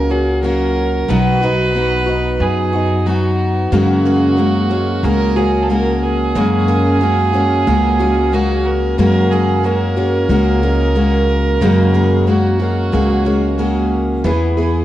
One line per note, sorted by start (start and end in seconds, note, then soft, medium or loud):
0.00 1.05 C#2 medium
0.00 0.12 F#3 soft
0.00 1.10 F#3 soft
0.00 0.10 A#3 soft
0.00 1.16 A#3 soft
0.00 0.43 C#4 medium
0.00 0.12 A#4 medium
0.09 0.42 F#3 soft
0.09 0.43 A#3 soft
0.09 0.43 C#4 soft
0.09 0.43 F#4 medium
0.09 0.42 G#4 medium
0.42 1.09 F#3 medium
0.42 1.09 A#3 medium
0.42 1.16 C#4 medium
0.42 1.09 C#4 medium
0.42 1.10 F#4 medium
0.42 1.10 A#4 medium
1.08 2.36 B1 medium
1.08 1.42 B2 medium
1.08 1.42 F#3 medium
1.08 1.41 F#3 medium
1.08 1.42 B3 medium
1.08 1.42 D#4 medium
1.08 1.40 F#4 medium
1.08 2.43 B4 loud
1.41 3.71 F#3 medium
1.41 1.74 B3 soft
1.41 1.75 D#4 soft
1.41 3.05 D#4 medium
1.41 1.75 F#4 soft
1.74 2.07 F#3 medium
1.74 3.79 B3 medium
1.74 2.08 B3 medium
1.74 2.06 D#4 medium
1.74 2.05 F#4 medium
2.06 2.74 B3 soft
2.06 2.73 D#4 soft
2.06 2.71 F#4 medium
2.40 3.68 F#2 loud
2.40 3.08 G#4 medium
2.73 3.06 B3 soft
2.73 3.07 D#4 soft
2.73 3.06 F#4 medium
3.06 3.72 F#3 medium
3.06 3.73 B3 medium
3.06 3.79 D#4 medium
3.06 3.73 D#4 medium
3.06 3.72 F#4 medium
3.06 3.73 F#4 medium
3.72 5.00 F#2 medium
3.72 4.38 F#2 medium
3.72 4.38 C#3 medium
3.72 6.34 F#3 medium
3.72 4.37 G#3 medium
3.72 4.37 A#3 medium
3.72 4.38 C#4 medium
3.72 5.06 F#4 medium
3.72 4.39 F#4 medium
3.72 4.06 G#4 medium
4.06 4.37 A#3 medium
4.06 4.70 C#4 medium
4.06 5.05 G#4 medium
4.37 4.71 G#3 medium
4.37 4.71 A#3 medium
4.37 5.03 A#3 medium
4.37 4.70 C#4 medium
4.37 4.69 F#4 medium
4.70 5.02 G#3 soft
4.70 5.03 A#3 soft
4.70 5.04 C#4 soft
4.70 5.04 C#4 medium
4.70 5.03 F#4 medium
5.03 6.31 C#2 medium
5.03 5.36 G#3 medium
5.03 5.68 A#3 medium
5.03 5.37 A#3 medium
5.03 5.69 C#4 medium
5.03 5.36 C#4 medium
5.03 5.35 F#4 medium
5.03 5.37 G#4 medium
5.03 5.39 A#4 loud
5.36 5.68 G#3 soft
5.36 5.69 A#3 soft
5.36 5.70 C#4 soft
5.36 5.69 F#4 medium
5.36 5.64 G#4 medium
5.36 5.71 G#4 medium
5.63 5.71 A4 medium
5.69 6.36 G#3 medium
5.69 6.67 A#3 soft
5.69 6.36 A#3 medium
5.69 6.67 C#4 soft
5.69 6.36 C#4 medium
5.69 6.36 F#4 medium
5.69 6.36 G#4 soft
5.69 6.04 A#4 loud
6.03 8.35 G#4 loud
6.35 7.63 F#2 medium
6.35 7.01 F#2 medium
6.35 7.01 C#3 medium
6.35 8.98 F#3 medium
6.35 7.00 G#3 medium
6.35 7.00 A#3 loud
6.35 7.01 C#4 medium
6.35 7.02 F#4 medium
6.35 6.69 G#4 medium
6.68 7.00 A#3 medium
6.68 7.33 C#4 medium
6.68 7.68 G#4 medium
7.00 7.34 G#3 medium
7.00 7.66 A#3 medium
7.00 7.34 A#3 medium
7.00 7.33 C#4 medium
7.00 7.32 F#4 medium
7.33 7.66 G#3 soft
7.33 7.67 A#3 medium
7.33 7.66 C#4 medium
7.33 7.67 C#4 medium
7.33 7.67 F#4 medium
7.67 8.95 C#2 loud
7.67 8.00 G#3 medium
7.67 8.32 A#3 medium
7.67 8.00 A#3 medium
7.67 8.32 C#4 medium
7.67 7.99 C#4 medium
7.67 7.98 F#4 medium
7.67 8.00 G#4 medium
7.99 8.30 G#3 soft
7.99 8.32 A#3 soft
7.99 8.33 C#4 medium
7.99 8.32 F#4 medium
7.99 8.34 G#4 medium
8.32 8.98 G#3 medium
8.32 9.31 A#3 medium
8.32 8.98 A#3 medium
8.32 8.98 C#4 medium
8.32 9.31 C#4 soft
8.32 8.67 F#4 medium
8.32 8.98 F#4 medium
8.32 8.99 G#4 medium
8.65 8.98 A#4 medium
8.98 9.64 F#2 medium
8.98 10.26 F#2 medium
8.98 9.64 C#3 medium
8.98 11.61 F#3 medium
8.98 9.63 G#3 medium
8.98 9.63 A#3 medium
8.98 9.64 C#4 medium
8.98 9.65 F#4 medium
8.98 9.32 G#4 medium
8.98 9.32 A#4 loud
9.31 9.63 A#3 soft
9.31 9.96 C#4 soft
9.31 9.66 G#4 medium
9.31 10.31 G#4 medium
9.63 9.97 G#3 medium
9.63 10.29 A#3 medium
9.63 9.97 A#3 medium
9.63 9.96 C#4 medium
9.63 9.95 F#4 medium
9.63 12.29 A#4 loud
9.97 10.28 G#3 soft
9.97 10.29 A#3 medium
9.97 10.29 C#4 medium
9.97 10.30 C#4 medium
9.97 10.30 F#4 medium
10.30 11.57 C#2 loud
10.30 10.63 G#3 medium
10.30 10.94 A#3 medium
10.30 10.63 A#3 medium
10.30 10.95 C#4 medium
10.30 10.63 C#4 medium
10.30 10.61 F#4 medium
10.30 10.63 G#4 medium
10.62 10.94 G#3 soft
10.62 10.95 A#3 medium
10.62 10.96 C#4 medium
10.62 10.96 F#4 medium
10.62 10.96 G#4 medium
10.95 11.62 G#3 medium
10.95 11.93 A#3 medium
10.95 11.61 A#3 medium
10.95 11.93 C#4 medium
10.95 11.62 C#4 medium
10.95 11.62 F#4 medium
10.95 11.62 G#4 medium
11.61 12.27 F#2 medium
11.61 12.89 F#2 medium
11.61 12.27 C#3 medium
11.61 14.24 F#3 medium
11.61 12.25 G#3 medium
11.61 12.27 A#3 medium
11.61 12.27 C#4 medium
11.61 12.28 F#4 medium
11.61 11.94 G#4 medium
11.94 12.26 A#3 medium
11.94 12.58 C#4 medium
11.94 12.93 G#4 medium
12.27 12.60 G#3 medium
12.27 12.92 A#3 medium
12.27 12.60 A#3 medium
12.27 12.59 C#4 medium
12.27 13.92 F#4 medium
12.27 12.58 F#4 medium
12.59 12.91 G#3 soft
12.59 12.92 A#3 soft
12.59 12.92 C#4 medium
12.59 12.93 C#4 soft
12.59 12.93 F#4 medium
12.92 14.20 C#2 loud
12.92 13.25 G#3 medium
12.92 13.57 A#3 medium
12.92 13.25 A#3 medium
12.92 13.58 C#4 medium
12.92 13.25 C#4 medium
12.92 13.23 F#4 medium
12.92 13.25 G#4 medium
13.25 13.56 G#3 soft
13.25 13.58 A#3 soft
13.25 13.58 C#4 soft
13.25 13.58 F#4 medium
13.25 13.58 G#4 medium
13.58 14.24 G#3 medium
13.58 14.31 A#3 soft
13.58 14.24 A#3 medium
13.58 14.31 C#4 medium
13.58 14.25 C#4 medium
13.58 14.25 F#4 medium
13.58 14.31 G#4 medium
14.24 14.85 E2 loud
14.24 14.85 E3 medium
14.24 14.57 E3 medium
14.24 14.57 B3 medium
14.24 14.57 E4 medium
14.24 14.55 G#4 medium
14.57 14.85 B3 medium
14.57 14.85 B3 soft
14.57 14.85 E4 medium
14.57 14.85 E4 soft
14.57 14.85 G#4 medium